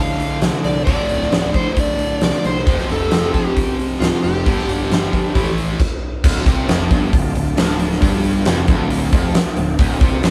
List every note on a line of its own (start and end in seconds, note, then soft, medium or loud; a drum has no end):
0.00 0.85 D2 medium
0.00 0.86 A2 medium
0.00 0.86 D3 medium
0.00 0.40 F5 medium
0.20 open hi-hat soft
0.42 0.51 C2 medium
0.42 snare loud
0.42 open hi-hat medium
0.64 0.83 C2 medium
0.64 0.84 D5 medium
0.64 open hi-hat soft
0.85 0.96 D1 medium
0.85 2.65 D2 medium
0.85 2.65 A2 medium
0.85 2.66 D3 medium
0.85 1.49 D5 loud
0.85 kick medium
0.85 open hi-hat medium
1.09 1.28 D1 medium
1.09 open hi-hat soft
1.21 snare soft
1.32 1.51 D1 medium
1.32 snare loud
1.32 open hi-hat medium
1.54 1.78 C5 medium
1.54 kick medium
1.54 open hi-hat soft
1.77 2.20 D5 loud
1.77 kick medium
1.77 open hi-hat medium
1.99 open hi-hat soft
2.21 2.31 C2 medium
2.21 2.44 D5 medium
2.21 snare loud
2.21 open hi-hat medium
2.44 2.63 C2 medium
2.44 2.87 C5 medium
2.44 open hi-hat soft
2.66 2.76 F1 medium
2.66 4.44 F2 medium
2.66 4.45 C3 medium
2.66 4.45 F3 medium
2.66 kick loud
2.66 open hi-hat medium
2.79 snare soft
2.89 3.08 F1 medium
2.89 3.32 A4 medium
2.89 open hi-hat soft
3.11 3.31 F1 medium
3.11 snare loud
3.11 open hi-hat medium
3.34 3.76 G4 medium
3.34 kick medium
3.34 open hi-hat soft
3.57 kick medium
3.57 open hi-hat medium
3.80 open hi-hat soft
4.00 4.10 D1 medium
4.00 4.23 F4 medium
4.00 snare loud
4.00 open hi-hat medium
4.23 4.42 F1 medium
4.23 5.53 G4 loud
4.23 open hi-hat soft
4.45 4.55 G1 medium
4.45 5.33 G2 medium
4.45 5.34 D3 medium
4.45 5.34 G3 medium
4.45 kick loud
4.45 open hi-hat medium
4.59 snare soft
4.68 4.87 G1 medium
4.68 open hi-hat medium
4.90 5.09 G1 medium
4.90 snare loud
4.90 open hi-hat medium
5.13 kick medium
5.13 open hi-hat soft
5.34 5.72 A1 loud
5.34 5.78 A2 medium
5.34 5.78 E3 medium
5.34 5.79 A3 medium
5.34 kick medium
5.34 open hi-hat medium
5.58 open hi-hat soft
5.80 kick medium
5.80 crash medium
6.24 6.45 D1 medium
6.24 6.46 D2 loud
6.24 6.40 A#3 medium
6.24 6.40 F#4 medium
6.24 6.39 D#5 medium
6.24 kick loud
6.24 crash loud
6.40 9.76 A3 medium
6.40 9.76 F4 medium
6.40 9.76 D5 medium
6.46 6.66 C2 medium
6.46 6.68 C3 loud
6.46 kick loud
6.46 open hi-hat medium
6.67 6.88 F1 medium
6.67 6.91 F2 loud
6.67 snare loud
6.67 open hi-hat medium
6.91 7.11 G1 medium
6.91 7.13 G2 loud
6.91 kick loud
6.91 open hi-hat medium
7.13 7.34 D1 medium
7.13 7.31 D2 medium
7.13 kick medium
7.13 open hi-hat medium
7.35 7.56 D1 medium
7.35 7.53 D2 medium
7.35 open hi-hat medium
7.57 7.98 D1 medium
7.57 8.01 D2 loud
7.57 snare loud
7.57 open hi-hat medium
7.80 open hi-hat medium
7.92 snare soft
8.01 8.43 G1 loud
8.01 8.45 G2 loud
8.01 kick loud
8.01 open hi-hat medium
8.24 open hi-hat medium
8.46 8.67 F1 medium
8.46 8.67 F2 loud
8.46 snare loud
8.46 open hi-hat medium
8.68 9.09 D1 loud
8.68 9.12 D2 loud
8.68 kick loud
8.68 open hi-hat medium
8.90 open hi-hat medium
9.12 9.33 F1 medium
9.12 9.34 F2 loud
9.12 kick loud
9.12 open hi-hat medium
9.35 snare loud
9.35 open hi-hat medium
9.57 9.77 D1 medium
9.57 9.74 D2 medium
9.57 open hi-hat medium
9.79 9.99 D1 medium
9.79 10.00 D2 loud
9.79 9.93 A#3 medium
9.79 9.93 F#4 medium
9.79 9.93 D#5 medium
9.79 kick loud
9.79 open hi-hat medium
9.94 10.30 A3 medium
9.94 10.30 F4 medium
9.94 10.30 D5 medium
10.01 10.21 C2 loud
10.01 10.22 C3 loud
10.01 kick loud
10.01 open hi-hat medium
10.23 10.30 F1 medium
10.23 10.30 F2 loud
10.23 snare loud
10.23 open hi-hat medium